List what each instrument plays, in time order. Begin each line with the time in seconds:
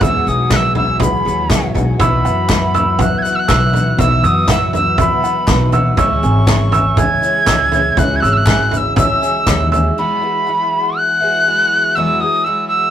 Already playing: tonewheel organ E3 E4 G#4 G#5, felt piano G#4 C#5 E5
0.00 felt piano E2 F#3 B3 E4 G#4 E5, upright bass E2, twelve-string acoustic guitar E2 B2 F#3 G#3 B3 F#4, tin whistle E6, kick, floor tom, shaker
0.26 upright bass B1, twelve-string acoustic guitar F#3 G#3 B3 F#4, tin whistle D#6, shaker
0.49 felt piano F#3 B3 E4 G#4 E5, twelve-string acoustic guitar F#3 G#3 B3 F#4, tin whistle F#6, kick, snare, clap, shaker
0.56 tin whistle E6
0.75 tin whistle E6, floor tom
1.00 felt piano F#3 B3 E4 G#4 F#5, tin whistle B5, kick, floor tom, shaker
1.25 upright bass D#2, twelve-string acoustic guitar F#3 G#3 B3 F#4, shaker
1.49 upright bass C#2, felt piano F#3 B3 E4 G#4 E5, twelve-string acoustic guitar F#3 G#3 B3 F#4, kick, snare, clap, shaker
1.74 upright bass B1, twelve-string acoustic guitar F#3 G#3 B3 F#4, floor tom, shaker
1.98 felt piano B1 B2 F#3 B3 E4 B4 E5, upright bass B1, twelve-string acoustic guitar B2 E3 B3 E4 F#4, tonewheel organ B3 B4 F#5, tin whistle B5, upright piano E6, kick, floor tom, shaker
2.25 upright bass F#2, upright piano F#5, shaker
2.49 twelve-string acoustic guitar E3 B3 E4 F#4, felt piano F#3 B3 E4 B4 E5, upright piano E5, kick, snare, clap, shaker
2.74 upright piano E6, floor tom, shaker
2.98 felt piano F#3 B3 E4 B4 E5, upright piano F#5, tin whistle F#6, kick, floor tom, shaker
3.18 tin whistle F#6 G#6
3.23 twelve-string acoustic guitar B3 E4 F#4, upright piano E5, shaker
3.35 tin whistle E6 F#6
3.48 upright bass B1, twelve-string acoustic guitar E3 B3 E4 F#4, felt piano F#3 B3 E4 B4 E5, upright piano E6, kick, snare, clap, shaker
3.73 twelve-string acoustic guitar B3 E4 F#4, floor tom, shaker
3.98 upright bass B1, felt piano B1 B2 F#3 B3 E4 B4 E5, twelve-string acoustic guitar B2 E3 B3 E4 F#4, upright piano E5, tin whistle E6, kick, floor tom, shaker
4.24 upright bass F#2, twelve-string acoustic guitar B3 E4 F#4, tin whistle D#6, upright piano E6, shaker
4.47 twelve-string acoustic guitar E3 B3 E4 F#4, felt piano F#3 B3 E4 B4 E5, upright piano F#5, tin whistle E6, kick, snare, clap, shaker
4.73 upright piano E5, tin whistle E6, floor tom, shaker
4.97 felt piano F#3 B3 E4 B4 E5, tin whistle B5, upright piano E6, kick, floor tom, shaker
5.22 twelve-string acoustic guitar B3 E4 F#4, upright piano F#5, shaker
5.47 upright bass B1, twelve-string acoustic guitar E3 B3 E4 F#4, felt piano F#3 B3 D#4 E4 B4, kick, snare, clap, shaker
5.72 twelve-string acoustic guitar B3 E4 F#4, upright piano E6, floor tom, shaker
5.96 felt piano C#2 C#3 G#3 C#4 E4 C#5 E5, upright bass C#2, tonewheel organ C#3 C#4 G#4, twelve-string acoustic guitar C#3 E3 G#3 C#4 E4, tin whistle C#6, upright piano E6, kick, floor tom, shaker
6.23 upright bass G#1, upright piano G#5, shaker
6.47 twelve-string acoustic guitar E3 G#3 C#4 E4, felt piano G#3 C#4 E4 C#5 E5, upright piano E5, kick, snare, clap, shaker
6.72 upright piano E6, floor tom, shaker
6.96 felt piano G#3 C#4 E4 C#5 E5, upright piano G#5, tin whistle G#6, kick, floor tom, shaker
7.22 twelve-string acoustic guitar G#3 C#4 E4, upright piano E5, shaker
7.46 upright bass C#2, twelve-string acoustic guitar E3 G#3, felt piano G#3 C#4 E4 C#5 E5, upright piano E6, kick, snare, clap, shaker
7.50 twelve-string acoustic guitar C#4 E4
7.72 twelve-string acoustic guitar G#3 C#4 E4, floor tom, shaker
7.95 upright bass C#2, felt piano C#2 C#3 G#3 C#4 E4 C#5 E5, twelve-string acoustic guitar C#3 E3 G#3 C#4 E4, tonewheel organ F#4, upright piano E5, tin whistle F#6, kick, floor tom, shaker
8.16 tin whistle G#6
8.20 upright bass G#1, twelve-string acoustic guitar G#3 C#4 E4, upright piano E6, tin whistle F#6
8.24 shaker
8.33 tin whistle E6
8.37 tin whistle F#6
8.46 twelve-string acoustic guitar E3 G#3 C#4 E4, felt piano G#3 C#4 E4 C#5 E5, upright piano G#5, kick, snare, clap, shaker
8.71 upright piano E5, tin whistle F#6, floor tom, shaker
8.77 tin whistle E6
8.96 felt piano G#3 C#4 E4 C#5 E5, tin whistle E6, upright piano E6, kick, floor tom, shaker
9.21 twelve-string acoustic guitar G#3 C#4 E4, upright piano G#5, shaker
9.46 upright bass D#2, twelve-string acoustic guitar E3 G#3 C#4 E4, felt piano G#3 C#4 D#4 E4 C#5, kick, snare, clap, shaker
9.72 twelve-string acoustic guitar G#3 C#4 E4, upright piano E6, floor tom, shaker
9.98 twelve-string acoustic guitar E2 B2 F#3 G#3 B3 E4, tonewheel organ E3 E4 G#4 F#5, tin whistle B5
10.22 twelve-string acoustic guitar F#3 G#3 B3 E4
10.47 twelve-string acoustic guitar F#3 G#3 B3 E4
10.97 tin whistle F#6
11.20 twelve-string acoustic guitar F#3 G#3 B3 E4
11.46 twelve-string acoustic guitar F#3 G#3 B3 E4
11.95 twelve-string acoustic guitar E2 B2 F#3 G#3 B3 E4, tin whistle E6
12.20 twelve-string acoustic guitar F#3 G#3 B3 E4, tin whistle D#6
12.44 twelve-string acoustic guitar F#3 G#3 B3 E4, tin whistle E6
12.68 tin whistle E6